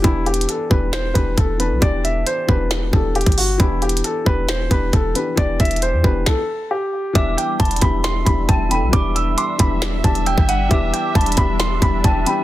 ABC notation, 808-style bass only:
X:1
M:4/4
L:1/16
Q:1/4=135
K:Em
V:1 name="808-style bass" clef=bass
E,,,4 z2 E,,,4 E,,,2 E,,,3 B,,, | E,,,4 z2 E,,,4 E,,,3 G,,,3 | E,,,4 z2 E,,,4 E,,,2 E,,,2 z2 | E,,,2 E,,,3 E,, E,,,2 z8 |
E,,,2 z2 E,,,2 E,,,4 E,,,2 E,,,3 B,,, | E,,,4 z2 E,,,4 E,,,3 G,,,3 | E,,,2 z2 E,,,2 E,,,4 E,,,2 E,,,2 z2 |]